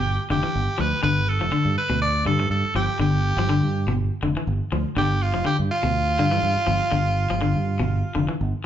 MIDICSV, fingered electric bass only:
0, 0, Header, 1, 3, 480
1, 0, Start_track
1, 0, Tempo, 490196
1, 1013, Time_signature, 4, 2, 24, 8
1, 8479, End_track
2, 0, Start_track
2, 0, Title_t, "Fingered electric bass"
2, 0, Program_c, 0, 33
2, 0, Note_on_c, 0, 31, 99
2, 171, Note_off_c, 0, 31, 0
2, 295, Note_on_c, 0, 29, 95
2, 416, Note_off_c, 0, 29, 0
2, 542, Note_on_c, 0, 31, 98
2, 660, Note_off_c, 0, 31, 0
2, 775, Note_on_c, 0, 38, 93
2, 896, Note_off_c, 0, 38, 0
2, 1012, Note_on_c, 0, 31, 104
2, 1384, Note_off_c, 0, 31, 0
2, 1384, Note_on_c, 0, 29, 93
2, 1485, Note_off_c, 0, 29, 0
2, 1616, Note_on_c, 0, 43, 83
2, 1721, Note_off_c, 0, 43, 0
2, 1856, Note_on_c, 0, 38, 89
2, 2185, Note_off_c, 0, 38, 0
2, 2209, Note_on_c, 0, 43, 95
2, 2434, Note_off_c, 0, 43, 0
2, 2449, Note_on_c, 0, 43, 93
2, 2572, Note_off_c, 0, 43, 0
2, 2688, Note_on_c, 0, 31, 93
2, 2811, Note_off_c, 0, 31, 0
2, 2929, Note_on_c, 0, 31, 102
2, 3275, Note_off_c, 0, 31, 0
2, 3296, Note_on_c, 0, 31, 86
2, 3523, Note_off_c, 0, 31, 0
2, 3550, Note_on_c, 0, 43, 84
2, 3770, Note_off_c, 0, 43, 0
2, 3787, Note_on_c, 0, 31, 96
2, 4008, Note_off_c, 0, 31, 0
2, 4138, Note_on_c, 0, 29, 89
2, 4256, Note_off_c, 0, 29, 0
2, 4378, Note_on_c, 0, 31, 99
2, 4496, Note_off_c, 0, 31, 0
2, 4620, Note_on_c, 0, 38, 88
2, 4738, Note_off_c, 0, 38, 0
2, 4860, Note_on_c, 0, 31, 102
2, 5233, Note_off_c, 0, 31, 0
2, 5233, Note_on_c, 0, 29, 91
2, 5329, Note_off_c, 0, 29, 0
2, 5474, Note_on_c, 0, 43, 88
2, 5570, Note_off_c, 0, 43, 0
2, 5711, Note_on_c, 0, 38, 86
2, 6032, Note_off_c, 0, 38, 0
2, 6060, Note_on_c, 0, 43, 95
2, 6279, Note_off_c, 0, 43, 0
2, 6296, Note_on_c, 0, 43, 87
2, 6415, Note_off_c, 0, 43, 0
2, 6536, Note_on_c, 0, 31, 106
2, 6655, Note_off_c, 0, 31, 0
2, 6778, Note_on_c, 0, 31, 105
2, 7120, Note_off_c, 0, 31, 0
2, 7150, Note_on_c, 0, 31, 82
2, 7370, Note_off_c, 0, 31, 0
2, 7393, Note_on_c, 0, 43, 75
2, 7612, Note_off_c, 0, 43, 0
2, 7639, Note_on_c, 0, 31, 99
2, 7855, Note_off_c, 0, 31, 0
2, 7988, Note_on_c, 0, 29, 94
2, 8103, Note_off_c, 0, 29, 0
2, 8232, Note_on_c, 0, 31, 99
2, 8345, Note_off_c, 0, 31, 0
2, 8479, End_track
3, 0, Start_track
3, 0, Title_t, "Muted fingered electric bass strokes"
3, 2583, Note_on_c, 9, 29, 40
3, 2681, Note_off_c, 9, 29, 0
3, 6427, Note_on_c, 9, 29, 40
3, 6525, Note_off_c, 9, 29, 0
3, 8479, End_track
0, 0, End_of_file